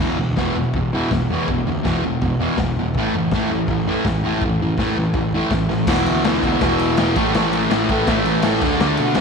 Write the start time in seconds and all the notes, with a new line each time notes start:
0.00 E1 E2 B2 E3
0.18 D2 E2 B2, floor tom
0.36 E1 E2 B2 E3, kick, snare, floor tom
0.55 E2 B2, floor tom
0.73 E1 E2 B2, kick, floor tom
0.93 E2 B2 E3, floor tom
1.10 E1 E2 B2, kick, snare, floor tom
1.28 E1 E2, floor tom
1.32 B2 E3
1.47 E1 E2 B2, kick, floor tom
1.66 D2 E2 B2, floor tom
1.83 E1 E2 B2 E3, kick, snare, floor tom
2.02 E2 B2, floor tom
2.22 E1 E2 B2, kick, floor tom
2.40 E2 B2 E3, floor tom
2.57 E1 E2 B2, kick, snare, floor tom
2.75 E1 E2 B2, floor tom
2.94 A1 A2, kick, floor tom
2.98 E3 A3
3.13 F#1 A2 E3, floor tom
3.31 A1 A2, kick, snare, floor tom
3.35 E3 A3
3.49 A2 E3, floor tom
3.67 A1 A2 E3, kick, floor tom
3.87 A2 E3 A3, floor tom
4.05 A1 A2 E3, kick, snare, floor tom
4.24 A1 A2 E3 A3, floor tom
4.41 A1, kick, floor tom
4.46 A2 E3
4.60 F#1 A2 E3, floor tom
4.77 A1 A2 E3 A3, kick, snare, floor tom
4.95 A2 E3, floor tom
5.13 A1 A2 E3, kick, floor tom
5.32 A2 E3 A3, floor tom
5.51 A1 A2 E3, kick, snare, floor tom
5.68 A1 A2 E3, snare
5.87 E1 E2 B2 E3, kick, snare, crash
6.05 D2, ride
6.22 D2 E2, snare, ride
6.26 B2 E3
6.43 E2 B2 E3, kick, ride
6.61 E1 E2 B2 E3, kick, snare, ride
6.79 E1, ride
6.97 E1 E2 B2 E3, snare, ride
7.16 A1 A2 E3 A3, kick, ride
7.34 A1 A2 E3 A3, snare, ride
7.53 ride
7.70 A1 A2 E3 A3, snare, ride
7.89 A2 E3 A3, kick, ride
8.07 A1 A2 E3 A3, kick, snare, ride
8.25 A1, ride
8.42 A1 A2 E3 A3, snare, ride
8.61 D2 D3 A3 D4, kick, crash
8.80 D2 D3 A3 D4, snare
8.97 B2, ride
9.14 B1, snare, ride